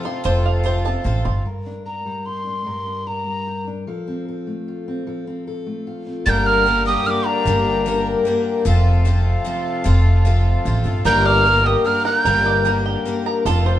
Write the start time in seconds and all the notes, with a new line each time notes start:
Already playing: C3 A3 F4 A4 C5 A5
0.03 C4 F4 A4 C6
0.24 F1 F3 C4 F4 A4 C5
0.46 F5
0.64 F3 C4 F4 A4 C5
0.85 C4 F4 A4 A5
1.04 A1 F3 C4 F4 A4
1.25 G1 C6
1.45 G2 A#4
1.66 D4
1.86 A#4 A#5
2.05 G3
2.26 G4 C6
2.47 D4
2.66 G2 A#4
2.87 D4
3.07 A#4 A#5
3.27 G3
3.47 G4
3.67 D4
3.87 F3 A4
4.08 C4
4.28 A4
4.47 A3
4.68 F4
4.88 C4
5.06 F3 A4
5.27 C4
5.47 A4
5.66 A3
5.87 F4
6.07 C4
6.26 G1 G2 D3 G3 A#3 D4 G4 A#4 G6 A6
6.46 A#4 F6
6.65 G3 A#3 D4 A#4
6.86 G3 A#3 D4 G4 A#4 D#6
7.05 G3 A#3 D4 G4 A#4 F6
7.10 D6
7.26 D4 A#5
7.45 G1 G2 D3 G3 A#3 D4 A#4
7.86 G3 A#3 D4 A#4
8.25 G3 A#3 D4 A#4
8.65 F1 C3 F3 A3 C4 F4 A4
9.05 F3 C4 F4 A4
9.44 F3 C4 F4 A4
9.84 F1 F3 C4 F4 A4
10.25 F3 C4 F4 A4
10.65 A1 F3 C4 F4 A4
10.84 G1 C4 F4 A4
11.05 G1 G2 D3 G3 A#3 D4 G4 A#4 G6
11.26 A#4 D5 F6
11.45 G3 A#3 D4 A#4
11.65 G4 G5 D#6
11.84 G3 A#3 D4 A#4 F6
12.05 A#4 A#5 F#6
12.21 G6
12.25 G1 G2 D3 G3 A#3 D4 A#4
12.46 D5
12.65 G3 A#3 D4 A#4
12.86 G5
13.05 G3 A#3 D4 A#4
13.26 A#5
13.45 F1 C3 F3 A3 C4 F4 A4
13.66 C5